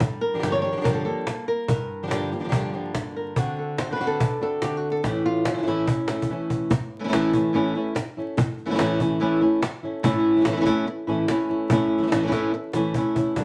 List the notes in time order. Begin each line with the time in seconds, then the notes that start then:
Already playing: D4
0.00 G3, muted nylon-string guitar stroke, cajon bass
0.21 A#4
0.34 D3 F3 A#3 D4 G4
0.38 D3 F3 A#3 D4 G4
0.43 G2 D3 F3 A#3 D4 G4, cajon slap
0.52 C#5
0.62 F3 A#3 D4 G4 C#5, cajon slap
0.72 D3 F3 A#3 D4 G4
0.76 D3 F3 A#3 D4 G4
0.81 D3 F3 A#3 D4 G4 A#4
0.85 G2 D3 F3 A#3 D4 G4, cajon bass
0.94 A4
1.05 F3 A#3 D4 G4 A4
1.27 muted nylon-string guitar stroke, cajon slap
1.48 A#4
1.68 G2 A#4, muted nylon-string guitar stroke, cajon bass
2.03 D3 F3 A#3 D4 G4
2.07 D3 F3 A#3 D4 G4
2.11 G2 D3 F3 A#3 D4 F4 G4, cajon slap
2.32 F3 A#3 D4 G4, cajon slap
2.39 D3 F3 A#3 D4 G4
2.44 D3 F3 A#3 D4 G4
2.49 D3 F3 A#3 D4 G4, cajon bass
2.53 G2 D3 F3 A#3 D4 G4
2.73 D3 F3 A#3 D4 G4
2.95 muted nylon-string guitar stroke, cajon bass, cajon slap
3.17 A#4
3.36 D3 A3 C4 F#4, cajon bass
3.59 A4
3.78 A3 C4 F#4 C5, cajon slap
3.91 D3 A3 C4 F#4 B4
3.95 D3 A3 C4 F#4
4.00 D3 A3 C4 D4 F#4
4.07 A4
4.20 D4, muted nylon-string guitar stroke, cajon bass
4.41 A3 C4 D4 F#4 A4
4.62 D3 A3 C4 F#4 G4, cajon slap
4.77 F#4
4.92 A4
5.03 A2 E3 A3 C#4 E4 G4, cajon bass, cajon slap
5.26 F4
5.45 A3 C#4 E4, cajon slap
5.53 E3 A3 C#4 E4
5.58 E3 A3 C#4 E4
5.62 E3 A3 C#4 E4
5.67 A2 E3 A3 C#4 E4
5.87 C#4, muted nylon-string guitar stroke, cajon bass
6.08 A3 C#4 E4, cajon slap
6.22 cajon bass
6.29 E3 A3 C#4 E4
6.50 cajon bass
6.71 muted nylon-string guitar stroke, cajon bass
6.99 E3 A3 C#4 E4
7.04 E3 A3 C#4 E4
7.08 E3 A3 C#4 E4
7.12 A2 E3 A3 C#4 E4, cajon slap
7.33 A3 C#4 E4, cajon bass
7.53 A2 E3 A3 C#4 E4, cajon slap
7.75 A3 C#4 E4
7.96 muted nylon-string guitar stroke, cajon slap
8.17 A3 C#4 E4
8.38 muted nylon-string guitar stroke, cajon bass
8.58 cajon slap
8.66 E3 A3 C#4 E4
8.70 E3 A3 C#4 E4
8.74 E3 A3 C#4 E4
8.79 A2 E3 A3 C#4 E4, cajon slap
9.00 A3 C#4 E4, cajon bass
9.20 A2 E3 A3 C#4 E4, cajon slap
9.41 A3 C#4 E4
9.62 muted nylon-string guitar stroke, cajon slap
9.83 A3 C#4 E4
10.03 A2 E3 A3 C#4 E4, muted nylon-string guitar stroke, cajon bass
10.37 E3 A3 C#4 E4
10.41 E3 A3 C#4 E4
10.45 A2 E3 A3 C#4 E4, cajon slap
10.52 E3 A3 C#4 E4
10.56 E3 A3 C#4 E4
10.61 E3 A3 C#4 E4
10.65 A2 E3 A3 C#4 E4, cajon bass, cajon slap
10.87 muted nylon-string guitar stroke
11.07 A2 E3 A3 C#4 E4
11.28 E3 A3 C#4 E4, muted nylon-string guitar stroke, cajon slap
11.50 A3 C#4 E4
11.70 A2 E3 A3 C#4 E4, muted nylon-string guitar stroke, cajon bass
11.98 E3 A3 C#4 E4
12.02 E3 A3 C#4 E4
12.07 E3 A3 C#4 E4
12.12 A2 E3 A3 C#4 E4, cajon slap
12.23 E3 A3 C#4 E4
12.27 E3 A3 C#4 E4
12.32 A2 E3 A3 C#4 E4, cajon bass, cajon slap
12.54 muted nylon-string guitar stroke
12.73 A2 E3 A3 C#4 E4, cajon slap
12.94 E3 A3 C#4 E4, muted nylon-string guitar stroke, cajon bass
13.15 A3 C#4 E4, cajon bass
13.36 G2 D3 G3 A#3 D4 A4, cajon bass, cajon slap